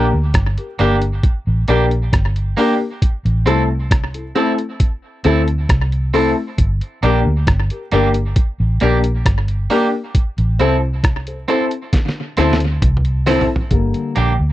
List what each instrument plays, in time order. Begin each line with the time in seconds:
Already playing: fingered electric bass A#1, grand piano A#4
0.13 fingered electric bass D2
0.34 fingered electric bass G1, kick, cross-stick, closed hi-hat
0.58 grand piano G4 A#4, closed hi-hat
0.79 fingered electric bass G1, grand piano A#3 D4 G4 A#4, clean electric guitar A#3 D4 G4, closed hi-hat
1.02 closed hi-hat
1.23 kick, closed hi-hat
1.47 fingered electric bass A1
1.68 fingered electric bass A#1, grand piano A#3 D4 G4 A#4, clean electric guitar A#3 D4 G4, closed hi-hat
1.91 closed hi-hat
2.13 fingered electric bass G1, kick, cross-stick, closed hi-hat
2.36 closed hi-hat
2.57 clean electric guitar A#3 D4 G4, grand piano A#3 D4 G4 A#4, open hi-hat
3.02 kick, closed hi-hat
3.25 fingered electric bass A1, closed hi-hat
3.46 fingered electric bass C2, grand piano A3 C4 E4 A4, clean electric guitar C4 E4 A4, closed hi-hat
3.91 kick, cross-stick, closed hi-hat
4.14 grand piano E4 A4, closed hi-hat
4.35 grand piano A3 C4 E4 A4, clean electric guitar C4 E4 A4, closed hi-hat
4.58 closed hi-hat
4.80 kick, closed hi-hat
5.24 fingered electric bass D2, grand piano A3 C4 E4 A4, clean electric guitar C4 E4 A4, closed hi-hat
5.48 closed hi-hat
5.69 fingered electric bass C2, kick, cross-stick, closed hi-hat
5.92 closed hi-hat
6.14 grand piano A3 C4 E4 A4, clean electric guitar C4 E4 A4, open hi-hat
6.58 fingered electric bass G1, kick, closed hi-hat
6.81 closed hi-hat
7.03 fingered electric bass A#1, clean electric guitar A#3 D4 G4, grand piano A#3 D4 G4 A#4, closed hi-hat
7.26 fingered electric bass D2
7.47 fingered electric bass G1, kick, cross-stick, closed hi-hat
7.70 grand piano G4 A#4, closed hi-hat
7.92 fingered electric bass G1, clean electric guitar A#3 D4 G4, grand piano A#3 D4 G4 A#4, closed hi-hat
8.14 closed hi-hat
8.36 kick, closed hi-hat
8.60 fingered electric bass A1
8.80 fingered electric bass A#1, clean electric guitar A#3 D4 G4, grand piano A#3 D4 G4 A#4, closed hi-hat
9.04 closed hi-hat
9.26 fingered electric bass G1, kick, cross-stick, closed hi-hat
9.48 closed hi-hat
9.70 grand piano A#3 D4 G4 A#4, clean electric guitar A#3 D4 G4, open hi-hat
10.15 kick, closed hi-hat
10.38 fingered electric bass A1, closed hi-hat
10.59 fingered electric bass C2, grand piano C4 E4 A4 C5, clean electric guitar C4 E4 A4, closed hi-hat
11.04 kick, cross-stick, closed hi-hat
11.27 grand piano A4 C5, closed hi-hat
11.48 clean electric guitar C4 E4 A4, grand piano C4 E4 A4 C5, closed hi-hat
11.71 closed hi-hat
11.93 kick, snare, closed hi-hat
12.09 snare
12.37 fingered electric bass D2, clean electric guitar C4 E4 A4, grand piano C4 E4 A4 C5, snare, closed hi-hat
12.53 snare
12.60 closed hi-hat
12.82 fingered electric bass C2, kick, closed hi-hat, mid tom
12.97 mid tom
13.05 closed hi-hat
13.26 grand piano C4 E4 A4 C5, clean electric guitar C4 E4 A4, snare, open hi-hat
13.41 floor tom
13.56 floor tom
13.71 fingered electric bass G1, grand piano D3 G3 A#3, kick, closed hi-hat
13.94 closed hi-hat
14.16 fingered electric bass A#1, clean electric guitar A#3 D4 G4, closed hi-hat
14.40 fingered electric bass D2